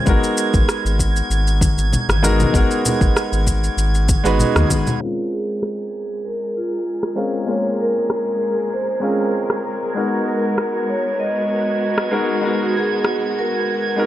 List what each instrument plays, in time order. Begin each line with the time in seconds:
Already playing: synth texture G#6
0.06 analog synth bass G#1, grand piano G#3 B3 D#4 F#4 A#4, kick, shaker
0.24 shaker
0.37 shaker
0.54 analog synth bass G#1, kick, shaker
0.69 cross-stick, shaker
0.85 analog synth bass G#1, shaker
0.99 kick, shaker
1.16 shaker
1.30 analog synth bass G#1, shaker
1.47 shaker
1.61 kick, high conga, shaker
1.78 analog synth bass G#1, shaker
1.93 low conga, shaker
2.09 analog synth bass G#1, cross-stick, high conga, shaker
2.22 grand piano G#3 B3 D#4 F#4 A#4, high conga, shaker
2.40 high conga, low conga, shaker
2.53 analog synth bass G#1, grand piano G#3 B3 D#4 F#4 A#4, kick, shaker
2.71 shaker
2.85 low conga, shaker
3.01 analog synth bass G#1, kick, shaker
3.17 cross-stick, shaker
3.32 analog synth bass G#1, shaker
3.47 kick, shaker
3.64 shaker
3.77 analog synth bass G#1, shaker
3.95 shaker
4.08 kick, high conga, shaker
4.24 analog synth bass G#1, grand piano G#3 B3 D#4 F#4 B4, shaker
4.39 low conga, shaker
4.56 analog synth bass D#2, cross-stick, high conga, shaker
4.70 kick, high conga, shaker
4.87 high conga, low conga, shaker
5.00 grand piano G#3 C4 C#4 F4 A#4, string section G#3 G#4 A#4, vibraphone F4, synth texture G#6
5.33 vibraphone G#4
5.63 cross-stick
6.26 vibraphone A#4
6.57 vibraphone F4
7.03 cross-stick
7.15 grand piano G#3 C4 C#4 F4 A#4
7.46 grand piano G#3 A#3 C#4 F4 A#4, vibraphone C#5
7.81 vibraphone A#4
8.10 cross-stick
8.73 vibraphone C5
8.98 grand piano G#3 C4 C#4, vibraphone A#4
9.02 grand piano F4 A#4, vibraphone G#4
9.50 cross-stick
9.94 grand piano G#3 B3 D#4 F#4 A#4, string section B3 F#4
10.28 vibraphone A#4
10.58 cross-stick
10.89 vibraphone C#5
11.20 vibraphone D#5
11.98 cross-stick
12.11 grand piano G#3 B3 D#4 F#4 A#4
12.41 grand piano G#3 B3 D#4 F#4 A#4
12.46 vibraphone F#4
12.77 vibraphone G#4
13.04 cross-stick
13.39 vibraphone A#4
13.96 grand piano G#3 B3 D#4 F#4 A#4